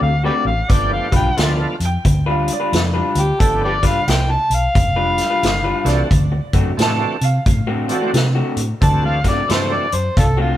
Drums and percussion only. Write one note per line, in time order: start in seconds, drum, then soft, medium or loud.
0.70 kick loud
0.70 closed hi-hat medium
1.12 kick medium
1.12 closed hi-hat medium
1.37 snare loud
1.37 closed hi-hat medium
1.80 closed hi-hat medium
2.05 kick loud
2.05 closed hi-hat medium
2.48 closed hi-hat medium
2.73 snare loud
2.73 closed hi-hat medium
3.15 closed hi-hat medium
3.40 kick loud
3.40 closed hi-hat medium
3.83 kick medium
3.83 snare soft
3.83 closed hi-hat medium
4.08 snare loud
4.08 closed hi-hat medium
4.51 closed hi-hat medium
4.75 kick loud
4.75 closed hi-hat medium
5.18 snare soft
5.18 closed hi-hat medium
5.43 snare loud
5.43 closed hi-hat medium
5.86 snare soft
5.86 closed hi-hat medium
6.11 kick loud
6.11 closed hi-hat medium
6.53 kick medium
6.53 closed hi-hat medium
6.79 snare loud
6.79 closed hi-hat medium
7.21 closed hi-hat medium
7.46 kick loud
7.46 closed hi-hat medium
7.89 closed hi-hat medium
8.14 snare loud
8.14 closed hi-hat medium
8.57 closed hi-hat medium
8.82 kick loud
8.82 closed hi-hat medium
9.24 kick medium
9.24 snare soft
9.24 closed hi-hat medium
9.50 snare loud
9.50 closed hi-hat medium
9.92 closed hi-hat medium
10.17 kick loud
10.17 closed hi-hat medium